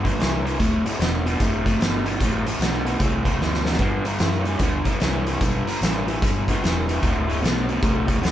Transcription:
Already playing: G1
0.04 G2 D3, kick, closed hi-hat
0.19 C2 G2 E3, snare, closed hi-hat
0.45 G2 E3, closed hi-hat
0.59 D1 D2 A2, kick, closed hi-hat
0.84 D2 A2, muted fingered electric bass stroke, closed hi-hat
0.99 E1 D2 B2, snare, closed hi-hat
1.26 D2 B2, closed hi-hat
1.40 F#1 D2 A2, kick, closed hi-hat
1.65 D2 A2, kick, closed hi-hat
1.79 G1 D2 B2, snare, closed hi-hat
2.06 D2 B2, closed hi-hat
2.20 A1 D2 A2, kick, closed hi-hat
2.46 D2 A2, closed hi-hat
2.59 B1 D2 B2, snare, closed hi-hat
2.85 D2 B2, closed hi-hat
2.99 C2 D2 A2, kick, closed hi-hat
3.24 D2 A2, kick, closed hi-hat
3.39 D2 B2, snare
3.54 snare
3.64 D2 B2, snare
3.73 snare
3.78 G2 D3, kick, closed hi-hat
4.05 G2 D3, closed hi-hat
4.19 F#2 G2 E3, snare, closed hi-hat
4.45 G2 E3, closed hi-hat
4.59 D2 G2 D3, kick, closed hi-hat
4.85 G2 D3, kick, closed hi-hat
5.00 C2 G2 E3, snare, closed hi-hat
5.27 G2 E3, closed hi-hat
5.41 B1 G2 D3, kick, closed hi-hat
5.67 G2 D3, muted fingered electric bass stroke, closed hi-hat
5.81 A1 G2 E3, snare, closed hi-hat
6.08 G2 E3, closed hi-hat
6.22 G1 G2 D3, kick, closed hi-hat
6.48 G2 D3, kick, closed hi-hat
6.62 E1 G2 E3, snare, closed hi-hat
6.89 G2 E3, closed hi-hat
7.02 D1 D2 A2, kick, closed hi-hat
7.27 D2 A2, closed hi-hat
7.42 B1 D2 B2, snare, closed hi-hat
7.68 D2 B2, closed hi-hat
7.82 C2 D2 A2, kick, closed hi-hat
8.07 D2 A2, kick, closed hi-hat
8.22 D1 D2 B2, snare, closed hi-hat

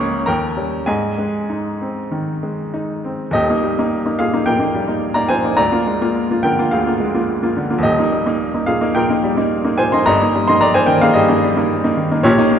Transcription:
Already playing: C#2 C#5 A#5 C#6
0.00 A#3 C#4
0.26 D#2 A#4 G5 A#5
0.56 G3 C#4
0.86 G#2 G#4 D#5 G#5
1.18 G#3
1.50 D#4
1.81 C4
2.11 D#3
2.43 G#3
2.74 D#4
3.05 C4
3.31 D#1 D#2 G4 D#5
3.50 A#3 D#4
3.63 G3
3.79 A#3 D#4
4.06 A#3 D#4
4.19 A#2 G#4 F5
4.33 A#3 D#4
4.46 A#2 A#4 G5
4.59 A#3 D#4
4.74 G3
4.88 A#3 D#4
5.14 A#3 D#4 D5 A#5
5.29 A#2 C5 G#5
5.44 A#3 D#4
5.57 D2 D5 A#5
5.72 A#3 F4
5.87 G#3
6.02 A#3 F4
6.31 A#3 F4
6.43 D3 A#4 G5
6.59 A#3 F4
6.71 D2 G#4 F5
6.87 A#3 F4
7.00 G#3
7.14 A#3 F4
7.42 A#3 F4
7.56 D3
7.70 A#3 F4
7.78 D#2
7.83 D#1 G4 D#5
7.99 A#3 D#4
8.12 G3
8.26 A#3 D#4
8.54 A#3 D#4
8.66 A#2 G#4 F5
8.81 A#3 D#4
8.95 A#2 A#4 G5
9.10 A#3 D#4
9.23 G3
9.37 A#3 D#4
9.64 A#3 D#4
9.78 A#2 C5 G#5
9.92 A#3 D#4 D#5 C6
10.06 G1 G2 D#5 A#5
10.22 A#3 D#4
10.35 G3
10.48 A#3 D#4 D#5 C6
10.61 D5 A#5
10.74 A#3 D#4 C5 G#5
10.86 D#3 A#4 G5
11.01 A#3 D#4 G#4 F5
11.14 G2 G4 D#5
11.28 A#3 D#4
11.43 G3
11.56 A#3 D#4
11.84 A#3 D#4
11.97 D#3
12.11 A#3 D#4
12.23 A#1 A#2 G4 C#5
12.38 A#3 D#4
12.51 A#3

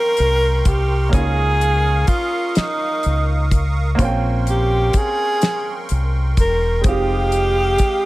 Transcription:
Already playing: A#3 C4 C#4 F4 A#4 G5 C6 C#6
0.17 C2, closed hi-hat
0.65 C2 G4, kick, closed hi-hat
1.09 A#3 C#4 D#6, kick
1.13 C#2 D#4 F4 G#4 F5, closed hi-hat
1.19 G#4
1.61 closed hi-hat
2.07 F4, kick, closed hi-hat
2.55 D#4, muted fingered electric bass stroke, snare, closed hi-hat
3.03 C#2, closed hi-hat
3.51 kick, closed hi-hat
3.95 A#3 C4 C6, kick, closed hi-hat
3.99 A#1 C#4 F4 G5
4.05 G5
4.47 G4, closed hi-hat
4.93 G#4, kick, closed hi-hat
5.42 snare, closed hi-hat
5.89 C2, closed hi-hat
6.37 E1 A#4, kick, closed hi-hat
6.81 G#3 C4, kick, closed hi-hat
6.85 F1 G#3 D#4 F4 G4 F5 D#6
6.90 G4
7.32 closed hi-hat
7.78 kick, closed hi-hat

